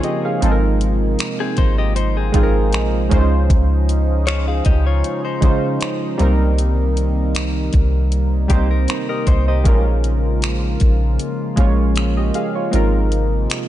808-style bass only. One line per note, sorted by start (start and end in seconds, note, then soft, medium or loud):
0.43 1.16 G#1 loud
1.58 2.32 G#1 loud
2.34 2.75 G#1 loud
2.73 3.10 A#1 medium
3.12 3.49 C#2 loud
3.50 4.62 C#2 loud
4.66 5.03 C#2 loud
5.42 5.79 C#3 loud
6.20 7.69 C2 loud
7.74 8.47 C2 loud
8.50 8.87 C2 loud
9.27 9.64 C2 loud
9.66 10.77 A#1 loud
10.82 11.18 A#1 loud
11.58 12.32 A#1 loud
12.74 13.47 G#1 loud